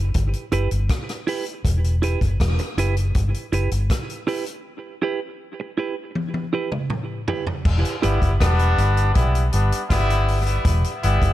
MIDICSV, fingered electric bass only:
0, 0, Header, 1, 2, 480
1, 0, Start_track
1, 0, Key_signature, 1, "minor"
1, 0, Tempo, 750000
1, 1055, Time_signature, 4, 2, 24, 8
1, 7252, End_track
2, 0, Start_track
2, 0, Title_t, "Fingered electric bass"
2, 0, Program_c, 0, 33
2, 0, Note_on_c, 0, 30, 81
2, 70, Note_off_c, 0, 30, 0
2, 98, Note_on_c, 0, 31, 80
2, 205, Note_off_c, 0, 31, 0
2, 332, Note_on_c, 0, 30, 85
2, 441, Note_off_c, 0, 30, 0
2, 457, Note_on_c, 0, 31, 75
2, 561, Note_off_c, 0, 31, 0
2, 1053, Note_on_c, 0, 28, 95
2, 1375, Note_off_c, 0, 28, 0
2, 1421, Note_on_c, 0, 30, 81
2, 1524, Note_off_c, 0, 30, 0
2, 1540, Note_on_c, 0, 28, 96
2, 1646, Note_off_c, 0, 28, 0
2, 1775, Note_on_c, 0, 30, 87
2, 1987, Note_off_c, 0, 30, 0
2, 2018, Note_on_c, 0, 31, 91
2, 2125, Note_off_c, 0, 31, 0
2, 2255, Note_on_c, 0, 30, 85
2, 2363, Note_off_c, 0, 30, 0
2, 2378, Note_on_c, 0, 31, 79
2, 2482, Note_off_c, 0, 31, 0
2, 4899, Note_on_c, 0, 28, 100
2, 5006, Note_off_c, 0, 28, 0
2, 5147, Note_on_c, 0, 31, 83
2, 5250, Note_off_c, 0, 31, 0
2, 5264, Note_on_c, 0, 30, 86
2, 5365, Note_off_c, 0, 30, 0
2, 5383, Note_on_c, 0, 28, 97
2, 5592, Note_off_c, 0, 28, 0
2, 5621, Note_on_c, 0, 31, 91
2, 5830, Note_off_c, 0, 31, 0
2, 5863, Note_on_c, 0, 35, 82
2, 6071, Note_off_c, 0, 35, 0
2, 6103, Note_on_c, 0, 31, 95
2, 6207, Note_off_c, 0, 31, 0
2, 6341, Note_on_c, 0, 31, 94
2, 6762, Note_off_c, 0, 31, 0
2, 6817, Note_on_c, 0, 28, 103
2, 6924, Note_off_c, 0, 28, 0
2, 7066, Note_on_c, 0, 31, 90
2, 7168, Note_off_c, 0, 31, 0
2, 7182, Note_on_c, 0, 30, 81
2, 7252, Note_off_c, 0, 30, 0
2, 7252, End_track
0, 0, End_of_file